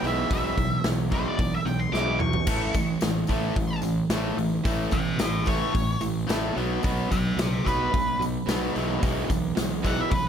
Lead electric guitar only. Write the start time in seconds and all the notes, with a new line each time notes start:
0.07 E5
0.33 E5
1.13 C5
1.28 D5
1.55 E5
1.65 G5
1.80 C6
1.92 D6
2.20 C#6
4.93 E5 G5
5.20 C#5 E5
5.48 C#5
7.11 E5 G5
7.40 C5 E5
7.67 B4
9.87 F#5
10.01 E5
10.11 B4